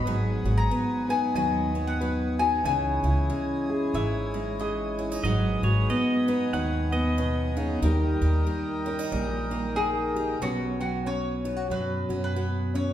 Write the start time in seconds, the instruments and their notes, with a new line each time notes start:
Already playing: nylon-string guitar F#3, steel-string acoustic guitar B3 D#4, mandolin B5
0.04 upright bass G#1, nylon-string guitar G#2, steel-string acoustic guitar F#3, accordion B4 F#5 G#5 D#6
0.44 upright bass G#1, steel-string acoustic guitar F#3, nylon-string guitar F#4
0.58 mandolin A#5
0.71 nylon-string guitar B3, steel-string acoustic guitar B3
1.09 steel-string acoustic guitar D#4, nylon-string guitar B4, mandolin G#5
1.34 upright bass D#2, nylon-string guitar D#3, steel-string acoustic guitar F#3, mandolin G#5
1.74 nylon-string guitar B3, steel-string acoustic guitar B3
1.87 mandolin F#5
2.01 steel-string acoustic guitar F#3, nylon-string guitar B4
2.39 steel-string acoustic guitar D#4, nylon-string guitar F#4, mandolin G#5
2.64 upright bass C#2, nylon-string guitar C#3, steel-string acoustic guitar E3, accordion E4 C#5, mandolin G#5
3.03 upright bass C#2, steel-string acoustic guitar E3, nylon-string guitar E4
3.30 steel-string acoustic guitar G#3, nylon-string guitar C#4
3.70 nylon-string guitar G#4
3.94 upright bass G#1, nylon-string guitar G#2, steel-string acoustic guitar E3, mandolin E5
4.34 steel-string acoustic guitar G#3, nylon-string guitar C#4
4.59 steel-string acoustic guitar E3, nylon-string guitar G#4, mandolin D#5
4.99 steel-string acoustic guitar C#4, nylon-string guitar E4
5.12 steel-string acoustic guitar D#4
5.23 upright bass G#1, nylon-string guitar G#2, steel-string acoustic guitar F#3, accordion B4 F#5 G#5, pedal steel guitar D#5
5.62 upright bass G#1, steel-string acoustic guitar F#3, nylon-string guitar F#4, pedal steel guitar C#5
5.90 steel-string acoustic guitar B3, nylon-string guitar B3, pedal steel guitar D#5
6.28 steel-string acoustic guitar D#4, nylon-string guitar B4
6.53 upright bass D#2, nylon-string guitar D#3, steel-string acoustic guitar F#3, pedal steel guitar F#5
6.92 steel-string acoustic guitar B3, nylon-string guitar B3, pedal steel guitar D#5
7.18 nylon-string guitar B2, steel-string acoustic guitar F#3
7.56 nylon-string guitar C#3, steel-string acoustic guitar D#4
7.82 upright bass D#2, nylon-string guitar D#3 D#4 G4 A#4, steel-string acoustic guitar G3, accordion A#4 D#5 G5
8.21 upright bass D#2, steel-string acoustic guitar G3
8.47 steel-string acoustic guitar A#3, nylon-string guitar D#4
8.86 steel-string acoustic guitar C#4, nylon-string guitar A#4
8.99 steel-string acoustic guitar D#4
9.12 upright bass A#1, nylon-string guitar A#2, steel-string acoustic guitar G3
9.51 steel-string acoustic guitar A#3, nylon-string guitar D#4
9.76 mandolin G#4, nylon-string guitar A#4
10.15 steel-string acoustic guitar D#4, nylon-string guitar G4
10.41 upright bass B1, nylon-string guitar B2 F#3 C#4, steel-string acoustic guitar F#3 C#4, mandolin F#4
10.80 nylon-string guitar F#3, steel-string acoustic guitar B3, mandolin F#4
11.06 steel-string acoustic guitar C#4, nylon-string guitar C#4, mandolin C#5
11.45 steel-string acoustic guitar B3, nylon-string guitar D#4
11.56 nylon-string guitar F#4
11.70 upright bass F#2, steel-string acoustic guitar F#3, nylon-string guitar F#4, mandolin B4
12.09 upright bass F#2, steel-string acoustic guitar C#4, nylon-string guitar F#4
12.24 mandolin B4
12.36 steel-string acoustic guitar B3, nylon-string guitar F#4
12.74 nylon-string guitar C#4, steel-string acoustic guitar C#4, mandolin C#5